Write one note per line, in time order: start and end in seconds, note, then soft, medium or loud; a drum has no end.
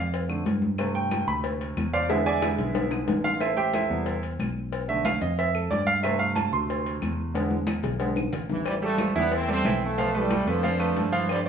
0.00 0.42 F2 medium
0.00 0.12 F5 medium
0.13 cowbell loud
0.13 high conga soft
0.29 0.44 D3 soft
0.29 0.44 F3 soft
0.29 0.44 A3 medium
0.29 high conga soft
0.29 claves medium
0.46 1.22 G2 medium
0.46 cowbell medium
0.46 high conga medium
0.62 high conga medium
0.78 2.06 C3 medium
0.78 2.06 A3 medium
0.78 1.92 F4 medium
0.78 cowbell loud
0.78 high conga soft
0.78 claves medium
0.95 1.25 G5 medium
0.95 high conga soft
1.11 cowbell medium
1.11 high conga loud
1.11 claves medium
1.27 1.73 D2 medium
1.27 1.38 B5 loud
1.27 high conga soft
1.44 cowbell loud
1.44 high conga soft
1.61 cowbell medium
1.61 high conga soft
1.77 2.53 E2 loud
1.77 cowbell medium
1.77 high conga medium
1.77 claves medium
1.93 2.09 F4 medium
1.93 2.09 C5 medium
1.93 2.09 D5 medium
1.93 2.09 F5 loud
1.93 high conga soft
2.09 3.37 D3 medium
2.09 3.37 G#3 medium
2.09 3.37 B3 medium
2.09 2.26 E4 medium
2.09 2.25 G#4 medium
2.09 2.26 B4 medium
2.09 2.25 E5 medium
2.09 cowbell loud
2.09 high bongo loud
2.09 high conga soft
2.26 2.41 G#4 medium
2.26 2.42 D5 medium
2.26 2.41 E5 medium
2.26 2.42 G#5 loud
2.26 high conga soft
2.42 2.88 E4 medium
2.42 2.88 G#4 medium
2.42 2.88 B4 medium
2.42 2.88 E5 medium
2.42 cowbell medium
2.42 high bongo loud
2.42 high conga loud
2.42 claves medium
2.58 3.04 B1 medium
2.58 cowbell medium
2.58 low bongo medium
2.75 cowbell loud
2.75 low bongo loud
2.75 high conga soft
2.91 low bongo loud
2.91 high conga soft
2.91 claves medium
3.08 3.84 A1 medium
3.08 cowbell medium
3.08 low bongo loud
3.08 high conga medium
3.24 3.41 F4 medium
3.24 3.40 F5 loud
3.24 low bongo medium
3.40 3.57 E4 medium
3.40 3.57 A4 medium
3.40 3.56 C5 medium
3.40 3.56 E5 medium
3.40 cowbell loud
3.40 high conga soft
3.40 claves medium
3.57 3.73 G4 medium
3.57 3.72 C5 medium
3.57 3.72 E5 medium
3.57 3.73 G5 loud
3.57 high conga soft
3.73 4.20 E4 medium
3.73 4.20 A4 medium
3.73 4.20 C5 medium
3.73 4.19 E5 medium
3.73 cowbell medium
3.73 high conga loud
3.73 claves medium
3.89 4.36 E2 loud
3.89 4.11 C3 medium
3.89 4.12 G3 medium
3.89 4.12 B3 medium
3.89 high conga soft
4.06 cowbell loud
4.06 high conga soft
4.23 cowbell medium
4.23 high conga soft
4.39 5.16 B1 medium
4.39 cowbell medium
4.39 high conga medium
4.39 claves medium
4.57 high conga soft
4.72 cowbell loud
4.72 high conga soft
4.88 5.10 D3 medium
4.88 5.11 F3 medium
4.88 5.11 A3 medium
4.88 5.05 E5 medium
4.88 high conga soft
5.05 5.21 F5 loud
5.05 cowbell medium
5.05 high conga loud
5.05 claves medium
5.21 5.67 F2 medium
5.21 5.38 D#5 medium
5.21 cowbell medium
5.21 high conga soft
5.38 5.54 E5 loud
5.38 cowbell loud
5.38 high conga soft
5.54 5.71 A4 medium
5.54 high conga soft
5.54 claves medium
5.71 6.47 G2 loud
5.71 5.87 D5 medium
5.71 cowbell medium
5.71 high conga medium
5.87 6.03 F5 loud
6.03 7.30 C3 medium
6.03 7.31 A3 medium
6.03 7.31 F4 medium
6.03 6.19 E5 medium
6.03 cowbell loud
6.03 high conga soft
6.03 claves medium
6.19 6.35 F5 loud
6.19 high conga soft
6.36 6.52 A5 medium
6.36 cowbell medium
6.36 high conga loud
6.36 claves medium
6.53 6.98 D2 loud
6.53 6.99 C6 loud
6.53 high conga soft
6.70 cowbell loud
6.70 high conga soft
6.86 cowbell medium
6.86 high conga soft
7.02 7.79 E2 loud
7.02 cowbell medium
7.02 high conga medium
7.02 claves medium
7.19 high conga soft
7.34 7.56 D3 medium
7.34 7.57 G#3 medium
7.34 7.57 B3 medium
7.34 cowbell loud
7.34 high conga medium
7.50 high conga medium
7.67 cowbell medium
7.67 high conga loud
7.67 claves medium
7.83 8.30 B1 loud
7.83 cowbell medium
7.83 high bongo medium
7.83 low conga medium
8.00 8.15 D3 medium
8.00 8.15 G#3 soft
8.00 8.15 B3 medium
8.00 cowbell loud
8.16 low bongo medium
8.16 low conga medium
8.16 claves medium
8.33 9.10 A1 medium
8.33 cowbell medium
8.33 low conga medium
8.49 8.66 C3 medium
8.49 8.66 E3 loud
8.49 low bongo medium
8.49 low conga medium
8.65 8.75 E3 medium
8.65 8.74 G3 loud
8.65 cowbell loud
8.65 high conga soft
8.65 claves medium
8.82 9.15 F3 medium
8.82 9.09 G3 medium
8.82 9.14 A3 loud
8.82 9.09 G4 medium
8.82 9.10 A4 medium
8.82 high conga soft
8.98 cowbell medium
8.98 high conga loud
8.98 claves medium
9.15 9.61 E2 medium
9.15 9.42 E3 medium
9.15 9.32 G3 medium
9.15 9.32 B3 loud
9.15 9.42 E4 loud
9.15 9.42 E5 medium
9.31 9.50 C4 loud
9.31 cowbell loud
9.31 high conga soft
9.36 9.50 A3 loud
9.48 9.62 G3 medium
9.48 9.80 A3 medium
9.48 9.81 C4 loud
9.48 9.62 G4 medium
9.48 9.62 A4 medium
9.48 cowbell medium
9.48 high conga soft
9.65 10.41 B1 medium
9.65 9.92 E3 medium
9.65 9.92 E4 medium
9.65 9.92 E5 medium
9.65 cowbell medium
9.65 high conga medium
9.65 claves medium
9.82 10.16 F3 medium
9.82 10.16 A3 loud
9.82 high conga soft
9.98 10.11 F3 medium
9.98 10.11 F4 medium
9.98 10.12 F5 medium
9.98 cowbell loud
9.98 high conga soft
10.14 10.49 E3 medium
10.14 10.49 G3 loud
10.14 10.41 A3 medium
10.14 10.41 A4 medium
10.14 10.41 B4 medium
10.14 high conga soft
10.30 cowbell medium
10.30 high conga loud
10.30 claves medium
10.47 10.93 F2 loud
10.47 11.10 D3 medium
10.47 11.10 F3 loud
10.47 10.60 A3 medium
10.47 10.60 A4 medium
10.47 10.61 B4 medium
10.47 cowbell medium
10.47 high conga soft
10.63 10.77 F3 loud
10.63 10.77 F4 medium
10.63 10.77 F5 medium
10.63 cowbell loud
10.63 high conga soft
10.79 11.06 A3 medium
10.79 11.06 A4 medium
10.79 11.06 B4 medium
10.79 high conga soft
10.79 claves medium
10.96 11.49 G2 loud
10.96 cowbell medium
10.96 high conga medium
11.12 11.30 C3 medium
11.12 11.29 E3 loud
11.12 11.39 F3 loud
11.12 11.39 F4 loud
11.12 11.40 F5 loud
11.29 11.39 D3 medium
11.29 11.39 G3 loud
11.29 cowbell loud
11.29 high conga soft
11.29 claves medium
11.45 11.49 C4 medium
11.45 11.49 C5 medium
11.45 11.49 D5 medium